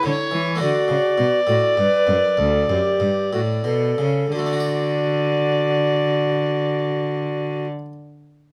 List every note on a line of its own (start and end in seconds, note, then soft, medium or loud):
0.00 0.29 D3 soft
0.00 0.54 A3 medium
0.00 0.55 E4 soft
0.00 0.57 E4 medium
0.00 0.56 G4 soft
0.06 0.14 D3 medium
0.06 0.61 C#5 medium
0.31 0.57 E3 soft
0.31 0.61 E3 medium
0.55 0.86 D3 soft
0.55 0.86 A3 soft
0.55 4.27 D4 soft
0.55 4.27 F#4 soft
0.62 0.70 D3 medium
0.62 1.40 F#4 medium
0.62 3.95 D5 medium
0.88 1.15 C#3 soft
0.88 0.98 C#3 medium
1.18 1.44 B2 soft
1.18 1.27 B2 medium
1.47 1.74 A2 soft
1.47 1.57 A2 medium
1.47 1.79 F#4 medium
1.77 2.04 G2 soft
1.77 1.86 G2 soft
1.77 2.40 B4 medium
2.07 2.34 F#2 soft
2.07 2.16 F#2 medium
2.37 2.65 D2 soft
2.37 2.69 D2 medium
2.37 2.72 A4 medium
2.69 2.77 F#2 medium
2.69 2.97 F#2 soft
2.69 3.33 G4 medium
3.00 3.29 G2 soft
3.00 3.09 G2 medium
3.33 3.62 A2 soft
3.33 3.65 A2 medium
3.33 3.40 F#4 soft
3.64 3.95 B2 soft
3.64 3.98 B2 medium
3.64 4.31 A4 medium
3.98 4.29 C#3 soft
3.98 4.32 C#3 soft
4.32 7.64 D3 soft
4.32 7.65 D3 medium
4.32 7.67 F#4 medium
4.32 7.64 D5 medium
4.39 7.71 A3 soft
4.46 7.78 D4 soft
4.53 7.85 F#4 soft
4.60 7.92 D5 soft